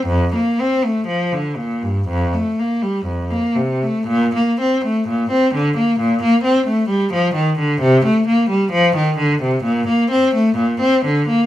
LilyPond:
\new Staff \with { instrumentName = "Cello" } { \clef bass \time 4/4 \key bes \major \tempo 4 = 64 f,16 bes16 c'16 a16 f16 d16 bes,16 g,16 f,16 a16 bes16 g16 f,16 bes16 c16 a16 | bes,16 bes16 c'16 a16 bes,16 c'16 d16 bes16 bes,16 bes16 c'16 a16 g16 f16 ees16 d16 | c16 a16 bes16 g16 f16 ees16 d16 c16 bes,16 bes16 c'16 a16 bes,16 c'16 d16 bes16 | }